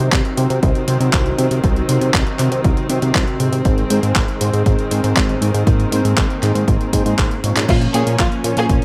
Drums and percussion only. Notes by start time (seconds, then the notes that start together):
0.12 kick, clap, closed hi-hat
0.25 closed hi-hat
0.37 closed hi-hat
0.50 closed hi-hat
0.63 kick, closed hi-hat
0.75 closed hi-hat
0.88 closed hi-hat
1.01 closed hi-hat
1.13 kick, clap, closed hi-hat
1.26 closed hi-hat
1.39 closed hi-hat
1.51 closed hi-hat
1.64 kick, closed hi-hat
1.76 closed hi-hat
1.89 closed hi-hat
2.01 closed hi-hat
2.14 kick, clap, closed hi-hat
2.27 closed hi-hat
2.39 clap, closed hi-hat
2.52 closed hi-hat
2.64 kick, closed hi-hat
2.77 closed hi-hat
2.89 closed hi-hat
3.02 closed hi-hat
3.15 kick, clap, closed hi-hat
3.27 closed hi-hat
3.40 closed hi-hat
3.53 closed hi-hat
3.65 kick, closed hi-hat
3.78 closed hi-hat
3.90 closed hi-hat
4.03 closed hi-hat
4.16 kick, clap, closed hi-hat
4.28 closed hi-hat
4.41 closed hi-hat
4.53 closed hi-hat
4.66 kick, closed hi-hat
4.79 closed hi-hat
4.91 closed hi-hat
5.04 closed hi-hat
5.16 kick, clap, closed hi-hat
5.29 closed hi-hat
5.42 closed hi-hat
5.54 closed hi-hat
5.67 kick, closed hi-hat
5.80 closed hi-hat
5.92 closed hi-hat
6.05 closed hi-hat
6.17 kick, clap, closed hi-hat
6.30 closed hi-hat
6.43 clap, closed hi-hat
6.55 closed hi-hat
6.68 kick, closed hi-hat
6.81 closed hi-hat
6.93 kick, closed hi-hat
7.06 closed hi-hat
7.18 kick, clap, closed hi-hat
7.31 closed hi-hat
7.44 closed hi-hat
7.56 clap, closed hi-hat
7.69 kick, closed hi-hat, crash
7.82 closed hi-hat
7.94 closed hi-hat
8.07 closed hi-hat
8.19 kick, clap, closed hi-hat
8.32 closed hi-hat
8.44 closed hi-hat
8.57 closed hi-hat
8.69 kick, closed hi-hat